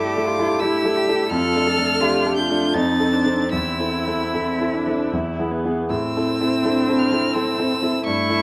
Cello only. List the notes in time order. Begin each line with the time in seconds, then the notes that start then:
Already playing: G4
0.26 F4
0.61 E4
0.96 G4
1.29 A4
2.00 F4
2.36 D4
2.73 C4
3.51 E4
6.63 D4
7.34 C4
8.04 E4